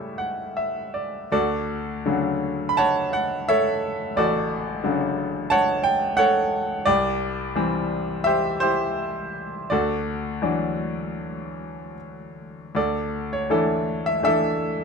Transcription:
0.00 1.28 A2 medium
0.00 1.27 C#3 soft
0.00 1.27 G3 soft
0.00 1.27 A3 soft
0.00 1.33 E4 medium
0.00 1.34 G4 medium
0.00 1.33 C#5 medium
0.00 0.52 E5 medium
0.18 0.53 F#5 medium
0.57 0.92 E5 medium
0.94 1.29 D5 soft
1.32 4.13 D2 medium
1.32 2.74 F#4 soft
1.32 2.74 A4 medium
1.32 2.76 D5 medium
2.06 4.81 C#3 soft
2.06 4.81 D3 soft
2.06 4.81 F#3 soft
2.69 2.77 B5 medium
2.77 3.48 C#5 medium
2.77 3.12 F#5 medium
2.77 3.10 A5 medium
3.13 3.49 F#5 medium
3.49 4.17 A4 medium
3.49 4.81 C#5 medium
3.49 4.19 E5 medium
4.16 6.82 A1 medium
4.16 5.48 F#4 medium
4.16 5.48 A4 medium
4.16 5.55 D5 medium
4.84 6.82 C#3 medium
4.84 6.82 D3 soft
4.84 6.82 F#3 soft
5.50 6.17 C#5 medium
5.50 6.15 F#5 medium
5.50 5.84 A5 medium
5.84 6.15 G5 medium
6.17 6.83 A4 medium
6.17 6.83 C#5 medium
6.17 6.88 F#5 medium
6.86 9.66 C2 medium
6.86 8.22 G4 medium
6.86 8.21 D5 medium
7.56 9.67 E3 soft
7.56 9.67 G3 soft
7.56 9.67 C4 medium
8.24 8.61 G4 medium
8.24 8.59 C5 medium
8.24 8.59 E5 medium
8.60 9.67 E4 medium
8.60 9.67 G4 medium
8.60 9.73 C5 medium
9.70 12.72 D2 medium
9.70 11.95 F#4 soft
9.70 11.95 A4 medium
9.70 11.94 D5 medium
10.42 12.72 E3 soft
10.42 12.72 F#3 soft
10.42 12.72 D4 soft
12.75 14.84 D2 medium
12.75 13.49 A4 soft
12.75 13.34 D5 medium
13.33 13.52 C#5 medium
13.50 14.22 E3 soft
13.50 14.22 A3 soft
13.50 14.22 D4 soft
13.50 14.84 E4 soft
13.50 14.08 A4 medium
14.06 14.23 E5 medium
14.23 14.84 E3 soft
14.23 14.84 A3 soft
14.23 14.84 D4 soft
14.23 14.84 A4 medium
14.23 14.84 E5 medium

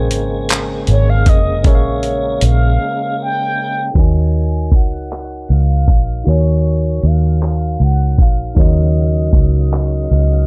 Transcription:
0.00 0.11 A#1 loud
0.00 3.91 C#3 medium
0.00 3.91 G#3 medium
0.00 3.91 A#3 medium
0.00 1.60 C#4 medium
0.00 1.60 G#4 medium
0.00 1.61 A#4 medium
0.00 1.62 C5 medium
0.00 3.97 G5 medium
0.00 3.97 G#5 medium
0.00 3.97 C#6 medium
0.11 0.84 G#1 medium
0.11 closed hi-hat medium
0.49 clap loud
0.49 closed hi-hat medium
0.87 1.27 G#1 medium
0.87 1.11 C#5 loud
0.87 closed hi-hat medium
1.09 1.30 F5 loud
1.26 1.65 F1 medium
1.26 1.68 D#5 loud
1.26 kick medium
1.26 closed hi-hat medium
1.64 2.38 A#1 loud
1.64 3.91 C#4 medium
1.64 3.91 G#4 medium
1.64 3.92 A#4 medium
1.64 2.43 C#5 medium
1.64 3.93 C#5 medium
1.64 kick loud
1.64 closed hi-hat medium
1.69 1.73 E5 medium
1.75 3.96 F5 medium
2.03 closed hi-hat medium
2.41 2.76 A#1 medium
2.41 3.16 F5 loud
2.41 closed hi-hat medium
3.22 4.01 G5 loud
3.94 4.72 D#2 loud
3.94 6.21 D#4 medium
3.94 6.22 F#4 soft
3.94 6.23 A#4 medium
3.94 6.23 C#5 soft
3.94 kick loud
3.94 closed hi-hat medium
3.94 crash medium
3.99 6.24 D#5 medium
3.99 4.74 G#5 loud
4.34 closed hi-hat soft
4.72 5.45 C#2 medium
4.72 5.54 F#5 loud
4.72 kick medium
4.72 closed hi-hat medium
5.10 clap loud
5.10 closed hi-hat medium
5.49 5.88 C#2 medium
5.49 6.28 F5 loud
5.49 closed hi-hat medium
5.88 6.23 A#1 medium
5.88 kick medium
5.88 closed hi-hat medium
6.24 6.99 D#2 medium
6.24 8.52 D#4 medium
6.24 8.53 F#4 medium
6.24 8.53 A#4 soft
6.24 closed hi-hat medium
6.28 8.54 C#5 medium
6.28 7.07 C#5 loud
6.28 8.55 G#5 medium
6.65 closed hi-hat soft
7.03 7.76 D#2 medium
7.03 7.81 F5 loud
7.03 closed hi-hat medium
7.41 clap loud
7.41 closed hi-hat medium
7.79 8.19 C#2 medium
7.79 closed hi-hat soft
7.83 8.23 F#5 loud
8.18 8.53 A#1 medium
8.18 8.62 F5 loud
8.18 kick medium
8.18 closed hi-hat medium
8.55 9.30 D#2 loud
8.55 10.47 C#3 medium
8.55 10.47 F#3 medium
8.55 10.47 D#4 medium
8.55 10.47 F#4 medium
8.55 10.47 A#4 medium
8.55 10.47 F5 medium
8.55 kick loud
8.55 closed hi-hat medium
8.59 10.47 C#5 medium
8.59 10.47 D#5 medium
8.95 closed hi-hat medium
9.33 10.06 C#2 medium
9.33 kick medium
9.33 closed hi-hat medium
9.71 clap loud
9.71 closed hi-hat medium
10.10 10.46 C#2 medium
10.10 closed hi-hat soft

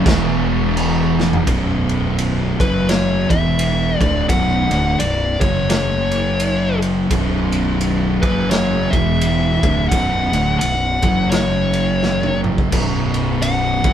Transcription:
0.05 1.43 E1 medium
0.05 1.45 E2 loud
0.05 1.46 B2 medium
0.05 1.46 E3 loud
0.05 kick loud
0.05 snare loud
0.05 crash medium
0.77 crash medium
1.20 snare medium
1.33 floor tom medium
1.47 2.55 B0 medium
1.47 2.58 B1 medium
1.47 2.58 F#2 medium
1.47 2.58 B2 medium
1.47 kick loud
1.47 ride medium
1.89 ride medium
2.19 ride medium
2.59 3.26 F#1 medium
2.59 3.28 F#2 medium
2.59 3.29 C#3 medium
2.59 3.29 F#3 loud
2.59 2.89 B4 medium
2.59 kick loud
2.59 ride medium
2.89 3.30 C#5 loud
2.89 snare loud
2.89 ride loud
3.30 3.96 E1 medium
3.30 3.99 E2 medium
3.30 3.99 B2 medium
3.30 4.00 E3 loud
3.30 3.96 E5 medium
3.30 kick medium
3.30 ride medium
3.59 ride loud
3.96 4.28 D2 medium
3.96 4.25 D5 medium
4.00 4.27 D1 loud
4.00 4.28 A2 medium
4.00 4.28 D3 loud
4.00 kick loud
4.00 ride medium
4.29 4.68 B0 medium
4.29 4.70 B1 medium
4.29 4.70 F#2 medium
4.29 4.70 B2 loud
4.29 5.02 F#5 loud
4.29 kick loud
4.29 ride loud
4.70 4.97 D1 medium
4.70 4.99 D2 medium
4.70 4.99 A2 loud
4.70 4.99 D3 loud
4.70 ride medium
4.99 5.38 B0 medium
4.99 5.33 B1 medium
4.99 5.33 F#2 medium
4.99 5.38 D5 medium
4.99 ride loud
5.41 7.07 F#1 loud
5.41 7.11 F#2 medium
5.41 7.11 C#3 loud
5.41 7.11 F#3 loud
5.41 5.68 C#5 medium
5.41 kick loud
5.41 ride medium
5.70 6.78 C#5 medium
5.70 snare loud
5.70 ride loud
6.11 ride medium
6.40 ride loud
6.82 ride medium
7.11 8.19 B0 medium
7.11 8.22 B1 medium
7.11 8.21 F#2 medium
7.11 8.22 B2 medium
7.11 kick loud
7.11 ride loud
7.52 ride medium
7.81 ride medium
8.22 8.89 F#1 loud
8.22 8.92 F#2 medium
8.22 8.92 C#3 loud
8.22 8.93 F#3 medium
8.22 8.50 B4 medium
8.22 kick loud
8.22 ride medium
8.51 8.94 C#5 loud
8.51 snare loud
8.51 ride loud
8.91 9.59 E1 medium
8.91 9.62 E2 medium
8.91 9.62 B2 loud
8.91 9.63 E3 loud
8.91 9.89 E5 medium
8.91 kick medium
8.91 ride medium
9.21 ride loud
9.62 9.89 D1 medium
9.62 9.90 D2 medium
9.62 9.91 A2 loud
9.62 9.92 D3 medium
9.62 kick loud
9.62 ride medium
9.89 10.31 B0 medium
9.89 10.32 B1 medium
9.89 10.32 F#2 medium
9.89 10.33 B2 loud
9.89 10.58 F#5 loud
9.89 kick loud
9.89 ride loud
10.32 10.59 D1 medium
10.32 10.60 D2 loud
10.32 10.61 A2 loud
10.32 10.61 D3 medium
10.32 ride medium
10.59 11.00 B0 medium
10.59 10.95 B1 medium
10.59 10.95 F#2 medium
10.59 11.33 F#5 loud
10.59 ride loud
11.02 12.69 F#1 medium
11.02 12.71 F#2 medium
11.02 12.71 C#3 medium
11.02 12.72 F#3 loud
11.02 kick loud
11.02 ride medium
11.30 12.39 C#5 medium
11.30 snare loud
11.30 ride loud
11.73 ride medium
12.03 snare medium
12.23 mid tom medium
12.44 mid tom medium
12.58 kick medium
12.71 13.80 B0 medium
12.71 13.83 B1 medium
12.71 13.83 F#2 medium
12.71 13.84 B2 loud
12.71 kick loud
12.71 ride loud
12.71 crash loud
13.14 ride medium
13.42 13.93 F#5 medium
13.42 ride medium
13.84 13.93 F#1 loud
13.84 13.93 F#2 medium
13.84 13.93 C#3 loud
13.84 13.93 F#3 loud
13.84 kick loud
13.84 ride medium

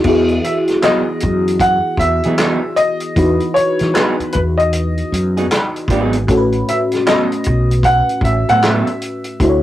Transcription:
0.04 0.38 E2 loud
0.04 3.12 E3 medium
0.04 3.13 B3 medium
0.04 3.13 E4 medium
0.04 3.14 F#4 medium
0.04 kick loud
0.04 crash medium
0.09 3.14 G#4 medium
0.29 closed hi-hat soft
0.44 0.53 E5 medium
0.44 closed hi-hat medium
0.68 snare soft
0.68 closed hi-hat soft
0.82 1.02 F#3 medium
0.82 1.02 B3 medium
0.82 1.03 D#4 medium
0.82 1.03 G#4 medium
0.82 1.63 D#5 medium
0.82 snare loud
0.82 clap medium
0.82 closed hi-hat medium
1.20 1.77 F#2 medium
1.20 kick medium
1.20 closed hi-hat medium
1.48 closed hi-hat soft
1.60 2.01 F#5 medium
1.60 kick medium
1.60 closed hi-hat medium
1.97 2.20 E2 medium
1.97 2.80 E5 loud
1.97 kick medium
1.97 closed hi-hat medium
2.24 2.58 E3 medium
2.24 2.35 F#3 soft
2.24 2.34 B3 soft
2.24 2.34 D#4 medium
2.24 2.33 G#4 medium
2.24 closed hi-hat soft
2.38 2.58 F#3 medium
2.38 2.58 B3 medium
2.38 2.59 D#4 medium
2.38 2.59 G#4 medium
2.38 snare loud
2.38 clap medium
2.38 closed hi-hat medium
2.76 3.57 D#5 loud
2.76 closed hi-hat medium
3.00 closed hi-hat soft
3.16 3.37 E2 loud
3.16 6.24 E3 medium
3.16 6.24 B3 medium
3.16 6.25 D#4 medium
3.16 6.25 F#4 medium
3.16 6.25 B4 medium
3.16 kick loud
3.16 closed hi-hat medium
3.40 closed hi-hat soft
3.54 3.95 C#5 medium
3.54 muted fretless electric bass stroke soft
3.54 closed hi-hat medium
3.79 3.93 E3 medium
3.79 snare soft
3.79 closed hi-hat soft
3.94 4.14 F#3 medium
3.94 4.14 B3 medium
3.94 4.15 D#4 medium
3.94 4.15 G#4 medium
3.94 4.32 B4 medium
3.94 snare loud
3.94 clap medium
3.94 closed hi-hat medium
4.20 muted fretless electric bass stroke soft
4.20 closed hi-hat soft
4.32 5.01 E2 medium
4.32 4.39 B4 medium
4.32 kick medium
4.32 closed hi-hat medium
4.58 5.85 D#5 medium
4.58 closed hi-hat soft
4.73 closed hi-hat medium
4.98 closed hi-hat soft
5.12 5.45 F#2 medium
5.12 closed hi-hat medium
5.37 5.46 F#3 medium
5.37 5.46 B3 medium
5.37 5.46 D#4 medium
5.37 5.45 G#4 medium
5.37 closed hi-hat soft
5.51 muted clean electric guitar stroke soft
5.51 snare loud
5.51 clap medium
5.51 closed hi-hat medium
5.76 closed hi-hat soft
5.88 6.29 G#1 medium
5.88 6.14 F#3 medium
5.88 6.15 B3 medium
5.88 6.15 D#4 medium
5.88 6.15 G#4 medium
5.88 kick medium
5.88 closed hi-hat medium
6.13 closed hi-hat soft
6.27 6.62 A1 loud
6.27 9.35 A2 medium
6.27 9.36 A3 medium
6.27 9.36 C#4 medium
6.27 9.37 F#4 medium
6.27 kick loud
6.27 closed hi-hat medium
6.31 6.38 A4 medium
6.37 9.40 B4 medium
6.52 closed hi-hat soft
6.68 6.77 E5 medium
6.68 closed hi-hat medium
6.92 snare soft
6.92 closed hi-hat soft
7.06 7.25 F#3 medium
7.06 7.26 B3 medium
7.06 7.26 C#4 medium
7.06 7.26 A4 medium
7.06 7.87 D#5 medium
7.06 snare loud
7.06 clap medium
7.06 closed hi-hat medium
7.32 closed hi-hat soft
7.44 8.00 B1 medium
7.44 kick medium
7.44 closed hi-hat medium
7.71 closed hi-hat soft
7.83 8.24 F#5 medium
7.83 kick medium
7.83 closed hi-hat medium
8.09 closed hi-hat soft
8.21 8.43 A1 loud
8.21 8.49 E5 medium
8.21 kick medium
8.21 closed hi-hat medium
8.49 8.82 A2 medium
8.49 8.58 F#3 medium
8.49 8.58 B3 medium
8.49 8.58 C#4 medium
8.49 8.57 A4 medium
8.49 8.62 F#5 medium
8.49 closed hi-hat soft
8.62 8.87 F#3 medium
8.62 8.87 B3 medium
8.62 8.87 C#4 medium
8.62 8.88 A4 medium
8.62 9.63 E5 medium
8.62 snare loud
8.62 clap medium
8.62 closed hi-hat medium
8.87 closed hi-hat soft
9.02 closed hi-hat medium
9.24 closed hi-hat soft
9.40 9.61 D2 loud
9.40 9.63 D3 medium
9.40 9.63 A3 medium
9.40 9.63 E4 medium
9.40 9.63 F#4 medium
9.40 9.50 C5 medium
9.40 kick loud
9.40 closed hi-hat medium
9.50 9.63 C#5 medium

